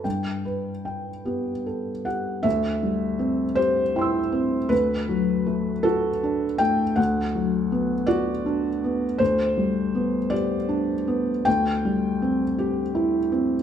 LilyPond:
<<
  \new Staff \with { instrumentName = "Felt piano" } { \time 6/8 \key g \lydian \tempo 4. = 53 << { g''8 b'8 g''8 g'8 a'8 g'8 | \key c \lydian r2 <g'' c''' e'''>4 | r2. | r2. |
r2. | r2. | } \\ { r2 r8 fis''8 | e''4. c''4. | b'4. a'4 g''8 | fis''4. d''4. |
c''4. d''4. | g''2. | } >> }
  \new Staff \with { instrumentName = "Felt piano" } { \time 6/8 \key g \lydian g,4. b4. | \key c \lydian d,8 g8 c'8 g'8 e'8 c'8 | d,8 fis8 a8 fis'8 d'8 a8 | d,8 fis8 b8 fis'8 d'8 b8 |
d,8 g8 b8 g'8 d'8 b8 | d,8 g8 c'8 g'8 e'8 c'8 | }
>>